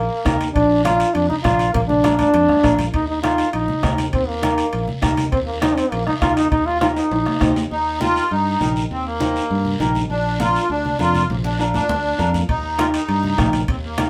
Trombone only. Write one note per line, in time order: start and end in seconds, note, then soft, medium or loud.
0.00 0.36 A#3 medium
0.54 0.82 D4 medium
0.84 1.15 F4 medium
1.14 1.28 D4 medium
1.29 1.36 D#4 medium
1.44 1.72 F4 medium
1.74 1.81 A#3 medium
1.88 2.16 D4 medium
2.18 2.74 D4 medium
2.94 3.08 D#4 medium
3.08 3.22 D#4 medium
3.23 3.51 F4 medium
3.53 3.95 D#4 medium
4.13 4.29 C4 medium
4.28 4.90 A#3 medium
5.32 5.39 C4 medium
5.47 5.61 A#3 medium
5.62 5.78 D#4 medium
5.77 5.93 C4 medium
5.91 6.06 A#3 medium
6.07 6.14 D#4 medium
6.21 6.36 F4 medium
6.37 6.51 D#4 medium
6.51 6.68 D#4 medium
6.66 6.80 F4 medium
6.81 6.88 F4 medium
6.97 7.52 D#4 medium